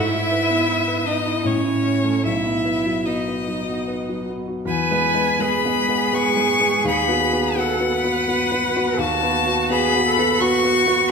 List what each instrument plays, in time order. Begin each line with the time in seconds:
Already playing: grand piano G#2, cello E4, violin E5
0.14 grand piano E4
0.32 grand piano B4
0.50 grand piano B3
0.68 grand piano E4
0.88 grand piano B4
1.06 grand piano B3, cello D#4, violin D#5
1.26 grand piano E4
1.44 grand piano A2, cello C#4, violin C#5
1.64 grand piano E4
1.83 grand piano C#5
2.04 grand piano A3
2.24 grand piano B1, cello E4, violin E5
2.45 grand piano B3
2.65 grand piano B4
2.86 grand piano F#3
3.06 grand piano B3, cello D#4, violin D#5
3.28 grand piano B4
3.48 grand piano F#3
3.70 grand piano B3
3.88 grand piano B4
4.09 grand piano F#3
4.29 grand piano B3
4.47 grand piano F#4
4.65 grand piano E2, cello B4, violin G#5
4.91 grand piano G#3 B3 B4
5.14 grand piano G#3 B3 B4
5.39 grand piano G#3 B3 B4, cello G#4, violin B5
5.65 grand piano G#3 B3 B4
5.88 grand piano G#3 B3 B4
6.12 grand piano G#3 B3 B4, violin C#6
6.36 grand piano G#3 B3 B4
6.60 grand piano G#3 B3 B4
6.84 grand piano D#2, violin B5
7.08 grand piano B3 F#4 B4
7.32 grand piano B3 F#4 B4
7.56 grand piano B3 F#4 B4, cello A4, violin F#5
7.80 grand piano B3 F#4 B4
7.93 cello B4
8.04 grand piano B3 F#4 B4
8.27 grand piano B3 F#4 B4
8.51 grand piano B3 F#4 B4
8.75 grand piano B3 F#4 B4
8.98 grand piano D#2, cello F#4, violin A5
9.22 grand piano B3 F#4 B4
9.46 grand piano B3 F#4 B4
9.70 grand piano B3 F#4 B4, cello G#4, violin B5
9.95 grand piano B3 F#4 B4
10.06 cello A4
10.18 grand piano B3 F#4 B4
10.40 grand piano B3 F#4 B4, cello F#4, violin C#6
10.64 grand piano B3 F#4 B4
10.86 grand piano B3 F#4 B4